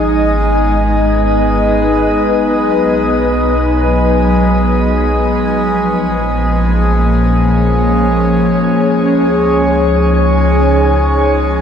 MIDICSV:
0, 0, Header, 1, 4, 480
1, 0, Start_track
1, 0, Tempo, 500000
1, 11149, End_track
2, 0, Start_track
2, 0, Title_t, "Ambient pad"
2, 0, Program_c, 0, 92
2, 0, Note_on_c, 0, 56, 68
2, 0, Note_on_c, 0, 59, 72
2, 0, Note_on_c, 0, 61, 79
2, 0, Note_on_c, 0, 63, 91
2, 0, Note_on_c, 0, 68, 75
2, 0, Note_on_c, 0, 75, 73
2, 312, Note_off_c, 0, 68, 0
2, 495, Note_off_c, 0, 61, 0
2, 659, Note_on_c, 0, 71, 86
2, 2331, Note_on_c, 0, 54, 83
2, 2340, Note_off_c, 0, 56, 0
2, 5407, Note_off_c, 0, 54, 0
2, 5410, Note_on_c, 0, 53, 76
2, 5411, Note_off_c, 0, 59, 0
2, 5416, Note_off_c, 0, 71, 0
2, 5949, Note_on_c, 0, 61, 76
2, 6042, Note_on_c, 0, 58, 70
2, 6633, Note_off_c, 0, 63, 0
2, 6640, Note_off_c, 0, 75, 0
2, 6779, Note_on_c, 0, 68, 68
2, 6784, Note_on_c, 0, 73, 75
2, 9394, Note_on_c, 0, 63, 77
2, 9708, Note_off_c, 0, 58, 0
2, 11149, Note_off_c, 0, 53, 0
2, 11149, Note_off_c, 0, 61, 0
2, 11149, Note_off_c, 0, 63, 0
2, 11149, Note_off_c, 0, 68, 0
2, 11149, Note_off_c, 0, 73, 0
2, 11149, End_track
3, 0, Start_track
3, 0, Title_t, "Harmonium"
3, 0, Program_c, 1, 20
3, 0, Note_on_c, 1, 56, 72
3, 11149, Note_off_c, 1, 56, 0
3, 11149, End_track
4, 0, Start_track
4, 0, Title_t, "Synth drone"
4, 0, Program_c, 2, 95
4, 0, Note_on_c, 2, 32, 88
4, 2294, Note_off_c, 2, 32, 0
4, 2335, Note_on_c, 2, 35, 82
4, 5371, Note_off_c, 2, 35, 0
4, 5408, Note_on_c, 2, 34, 86
4, 8443, Note_off_c, 2, 34, 0
4, 8478, Note_on_c, 2, 37, 88
4, 11149, Note_off_c, 2, 37, 0
4, 11149, End_track
0, 0, End_of_file